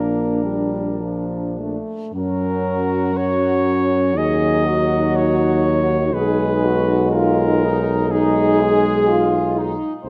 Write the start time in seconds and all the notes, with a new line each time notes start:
Already playing: A#1 A#3 D4 A#4
0.43 G3
1.02 F3
1.59 A3
2.14 F#2 F#3 C#4 F#4 A#4
3.14 F#3 C#4 C#5
4.15 D#2 F#3 D#4 G#4 D#5
4.66 F#4
5.16 C#5
6.13 B1 G#3 D#4 G#4 B4
6.65 F#4
7.12 F4 A#4
7.63 D#4
8.11 G#3 D#4 G#4
8.60 G#4
9.08 F4
9.58 D#4
10.04 C2 A3 D#4 G#4 C5